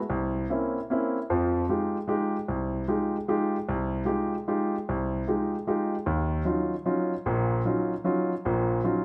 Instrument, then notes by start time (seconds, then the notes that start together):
grand piano
0.10 C2
0.50 A#3 C4 C#4 E4
0.90 A#3 C4 C#4 E4
1.30 F2 F3
1.69 G#3 D#4 F4 G4
2.08 G#3 D#4 F4 G4
2.48 C2
2.88 G#3 D#4 F4 G4
3.28 G#3 D#4 F4 G4
3.69 C2
4.05 G#3 D#4 F4 G4
4.48 G#3 D#4 F4 G4
4.89 C2
5.28 G#3 D#4 F4 G4
5.67 G#3 D#4 F4 G4
6.06 D#2
6.45 F#3 C#4 D#4 F4
6.86 F#3 C#4 D#4 F4
7.26 A#1 A#2
7.65 F#3 C#4 D#4 F4
8.04 F#3 C#4 D#4 F4
8.45 A#1 A#2
8.84 F#3 C#4 D#4 F4